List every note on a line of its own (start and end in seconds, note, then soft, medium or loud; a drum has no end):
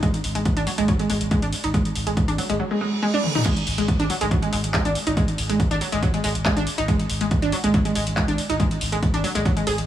0.03 0.08 G#3 medium
0.03 kick loud
0.03 closed hi-hat medium
0.14 closed hi-hat medium
0.24 0.35 G#1 loud
0.24 open hi-hat loud
0.35 0.45 G#1 medium
0.35 0.40 G#3 medium
0.35 closed hi-hat medium
0.45 kick loud
0.45 closed hi-hat medium
0.57 0.67 G#1 medium
0.57 0.64 D4 loud
0.57 closed hi-hat medium
0.67 0.72 F#3 medium
0.67 open hi-hat medium
0.78 0.88 G#1 medium
0.78 0.83 G#3 loud
0.78 closed hi-hat medium
0.88 0.94 F#3 medium
0.88 kick loud
0.88 closed hi-hat medium
0.99 1.07 G#3 medium
0.99 closed hi-hat medium
1.10 1.20 G#1 loud
1.10 1.18 G#3 medium
1.10 open hi-hat loud
1.21 1.31 G#1 medium
1.21 closed hi-hat medium
1.31 1.37 G#3 loud
1.31 kick loud
1.31 closed hi-hat medium
1.42 1.52 G#1 medium
1.42 1.50 D4 loud
1.42 closed hi-hat medium
1.53 open hi-hat medium
1.64 1.74 G#1 medium
1.64 1.69 D#4 medium
1.64 closed hi-hat medium
1.74 1.79 G#3 medium
1.74 kick loud
1.74 closed hi-hat medium
1.85 closed hi-hat medium
1.95 2.06 G#1 loud
1.95 open hi-hat loud
2.07 2.17 G#1 medium
2.07 2.12 G#3 medium
2.07 closed hi-hat medium
2.17 kick loud
2.17 closed hi-hat medium
2.28 2.38 G#1 medium
2.28 2.35 D4 loud
2.28 closed hi-hat medium
2.38 2.44 F#3 medium
2.38 open hi-hat medium
2.49 2.60 G#1 medium
2.49 2.54 G#3 loud
2.49 closed hi-hat medium
2.60 2.65 F#3 medium
2.60 reverse cymbal medium
2.71 2.78 G#3 medium
2.81 2.89 G#3 medium
3.03 3.08 G#3 loud
3.14 3.21 D4 loud
3.14 high tom soft
3.24 mid tom medium
3.35 3.40 D#4 medium
3.35 mid tom medium
3.45 3.51 G#3 medium
3.45 kick loud
3.45 closed hi-hat medium
3.45 crash loud
3.57 closed hi-hat medium
3.67 3.77 G#1 loud
3.67 open hi-hat loud
3.78 3.88 G#1 medium
3.78 3.83 G#3 medium
3.78 closed hi-hat medium
3.88 kick loud
3.88 closed hi-hat medium
4.00 4.10 G#1 medium
4.00 4.07 D4 loud
4.00 closed hi-hat medium
4.10 4.15 F#3 medium
4.10 open hi-hat medium
4.21 4.31 G#1 medium
4.21 4.26 G#3 loud
4.21 closed hi-hat medium
4.31 4.37 F#3 medium
4.31 kick loud
4.31 closed hi-hat medium
4.42 4.50 G#3 medium
4.42 closed hi-hat medium
4.53 4.63 G#1 loud
4.53 4.61 G#3 medium
4.53 open hi-hat loud
4.64 4.74 G#1 medium
4.64 closed hi-hat medium
4.74 4.80 G#3 loud
4.74 kick loud
4.74 clap loud
4.74 closed hi-hat medium
4.85 4.95 G#1 medium
4.85 4.93 D4 loud
4.85 closed hi-hat medium
4.95 open hi-hat medium
5.07 5.17 G#1 medium
5.07 5.12 D#4 medium
5.07 closed hi-hat medium
5.17 5.22 G#3 medium
5.17 kick loud
5.17 closed hi-hat medium
5.28 closed hi-hat medium
5.38 5.49 G#1 loud
5.38 open hi-hat loud
5.49 5.60 G#1 medium
5.49 5.54 G#3 medium
5.49 closed hi-hat medium
5.60 kick loud
5.60 closed hi-hat medium
5.71 5.81 G#1 medium
5.71 5.78 D4 loud
5.71 closed hi-hat medium
5.81 5.87 F#3 medium
5.81 open hi-hat medium
5.92 6.03 G#1 medium
5.92 5.97 G#3 loud
5.92 closed hi-hat medium
6.02 6.08 F#3 medium
6.02 kick loud
6.02 closed hi-hat medium
6.14 6.21 G#3 medium
6.14 closed hi-hat medium
6.24 6.35 G#1 loud
6.24 6.32 G#3 medium
6.24 open hi-hat loud
6.35 6.45 G#1 medium
6.35 closed hi-hat medium
6.45 6.51 G#3 loud
6.45 kick loud
6.45 clap loud
6.45 closed hi-hat medium
6.57 6.67 G#1 medium
6.57 6.64 D4 loud
6.57 closed hi-hat medium
6.67 open hi-hat loud
6.78 6.88 G#1 medium
6.78 6.83 D#4 medium
6.78 closed hi-hat medium
6.88 6.94 G#3 medium
6.88 kick loud
6.88 closed hi-hat medium
6.99 closed hi-hat medium
7.10 7.20 G#1 loud
7.10 open hi-hat loud
7.21 7.31 G#1 medium
7.21 7.26 G#3 medium
7.21 closed hi-hat medium
7.31 kick loud
7.31 closed hi-hat medium
7.42 7.52 G#1 medium
7.42 7.50 D4 loud
7.42 closed hi-hat medium
7.52 7.58 F#3 medium
7.52 open hi-hat medium
7.64 7.74 G#1 medium
7.64 7.69 G#3 loud
7.64 closed hi-hat medium
7.74 7.79 F#3 medium
7.74 kick loud
7.74 closed hi-hat medium
7.85 7.93 G#3 medium
7.85 closed hi-hat medium
7.95 8.06 G#1 loud
7.95 8.04 G#3 medium
7.95 open hi-hat loud
8.07 8.17 G#1 medium
8.07 closed hi-hat medium
8.17 8.22 G#3 loud
8.17 kick loud
8.17 clap loud
8.17 closed hi-hat medium
8.28 8.38 G#1 medium
8.28 8.35 D4 loud
8.28 closed hi-hat medium
8.38 open hi-hat loud
8.50 8.60 G#1 medium
8.50 8.54 D#4 medium
8.50 closed hi-hat medium
8.60 8.65 G#3 medium
8.60 kick loud
8.60 closed hi-hat medium
8.71 closed hi-hat medium
8.81 8.92 G#1 loud
8.81 open hi-hat loud
8.92 9.02 G#1 medium
8.92 8.97 G#3 medium
8.92 closed hi-hat medium
9.03 kick loud
9.03 closed hi-hat medium
9.14 9.24 G#1 medium
9.14 9.21 D4 loud
9.14 closed hi-hat medium
9.24 9.29 F#3 medium
9.24 open hi-hat medium
9.35 9.45 G#1 medium
9.35 9.40 G#3 loud
9.35 closed hi-hat medium
9.45 9.51 F#3 medium
9.45 kick loud
9.45 closed hi-hat medium
9.57 9.64 G#3 medium
9.57 closed hi-hat medium
9.67 9.78 G#1 loud
9.67 9.70 G#4 loud
9.67 open hi-hat loud
9.78 9.86 G#1 medium
9.78 closed hi-hat medium